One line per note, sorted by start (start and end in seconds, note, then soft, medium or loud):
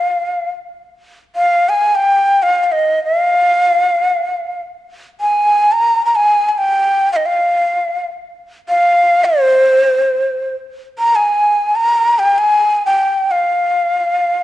0.00 0.50 F5 medium
1.36 1.71 F5 medium
1.69 1.97 G#5 medium
1.95 2.44 G5 medium
2.43 2.63 F5 medium
2.63 2.73 F5 soft
2.72 3.03 D#5 medium
3.04 4.62 F5 medium
5.21 5.74 G#5 medium
5.72 6.05 A#5 medium
6.06 6.17 A#5 medium
6.16 6.49 G#5 medium
6.49 6.59 G#5 medium
6.58 7.11 G5 medium
7.13 7.27 D#5 soft
7.13 7.18 F5 medium
7.26 8.06 F5 medium
8.69 9.26 F5 medium
9.25 10.54 C5 medium
10.99 11.17 A#5 medium
11.15 11.77 G#5 medium
11.76 12.20 A#5 medium
12.19 12.40 G5 medium
12.38 12.85 G#5 medium
12.86 13.33 G5 medium
13.31 14.43 F5 medium